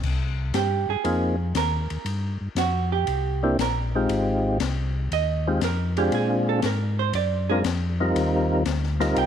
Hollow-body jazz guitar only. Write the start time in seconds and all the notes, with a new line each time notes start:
0.55 G4
0.90 G#4
1.57 A#4
2.58 F#4
2.92 G4
3.61 A#4
5.13 D#5
5.64 A#4
5.98 G4
6.15 G#4
6.49 A4
6.66 A#4
6.99 C5
7.15 D5
7.49 G#4
9.18 G5